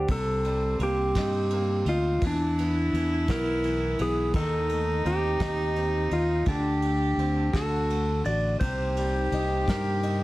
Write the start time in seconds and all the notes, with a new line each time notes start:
Already playing: D3 D4 A4 C5 D5 F#5
0.08 C2 C3 C4 A4, kick, ride
0.44 G3, ride
0.79 C2 A#3, ride
0.83 G4
1.15 G2 D#4, kick, snare, ride
1.50 A#3, ride
1.85 D2 D#4 F4, ride
2.21 E2 E3 E4, kick, ride
2.27 D4
2.58 B3, ride
2.93 E2 E3, ride
3.28 B1 B3 A#4, kick, snare, ride
3.64 E3, ride
3.99 B1 B3 G#4, ride
4.34 D#2 D#3 D#4 A4, kick, ride
4.69 A3, ride
5.05 D#2 C4 G4, ride
5.40 D#2 D#4, kick, snare, ride
5.76 C4, ride
6.11 D#2 D#4 F4, ride
6.45 D2 D3 D4 G4, kick, ride
6.82 A3, ride
7.17 D2 C4, ride
7.53 D2 D3 F#4 A4, kick, snare, ride
7.90 A3, ride
8.25 A1 F#4 D5, ride
8.60 C2 C3 G3 A#3 D#4 G4 C5, kick, ride
8.97 G3, ride
9.31 C2 D#4, ride
9.67 G2 A#4, kick, snare, ride
10.03 D#4, ride